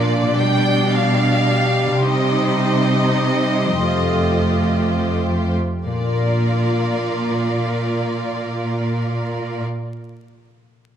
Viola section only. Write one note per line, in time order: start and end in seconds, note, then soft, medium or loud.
0.00 0.37 A#3 soft
0.00 2.00 D4 soft
0.41 3.82 G3 soft
2.04 3.83 D#4 soft
3.83 5.56 A3 soft
3.83 5.56 F4 soft
5.85 9.61 A#3 soft
5.85 9.62 F4 soft